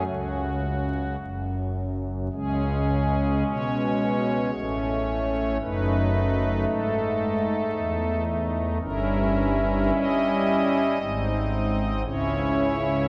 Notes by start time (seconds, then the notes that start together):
0.06 C#2 C#3 F#4
1.18 F#1 F#2
2.32 C#2 C#3 G#3 C#4 G#4
3.46 B2 C#5
4.54 A1 A2 A3 C#4
5.61 F#1 F#2 A3 D#4 B4
6.67 G#2 A4
7.74 E2
8.81 G1 G2 C#4 E4 A#4
9.94 G3 D#5
11.01 G#1 G#2 C4 D#4
12.05 C#2 C#3 C#4 E4 C#5